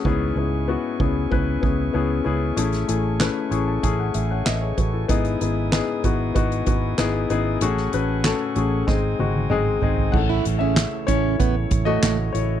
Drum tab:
CC |----------------|----------------|----------------|----------------|
HH |----------------|xxx-x-x-x-x-x-x-|xxx-x-x-xxx-x-x-|x-x-x-x---------|
CP |----------------|----x-------x---|----x-------x---|----x-----------|
SD |----------------|-o--o-------o---|----o-------o---|-o--o---o-------|
T1 |----------------|----------------|----------------|----------oo----|
T2 |----------------|----------------|----------------|------------o---|
FT |----------------|----------------|----------------|--------------oo|
BD |o-----o-o-o-----|--------o-----o-|o-----o-o-o-----|--------o-------|

CC |x---------------|
HH |--x-x-x-x-x-x-x-|
CP |----x-------x---|
SD |----o-------o---|
T1 |----------------|
T2 |----------------|
FT |----------------|
BD |o-----o-o-o-----|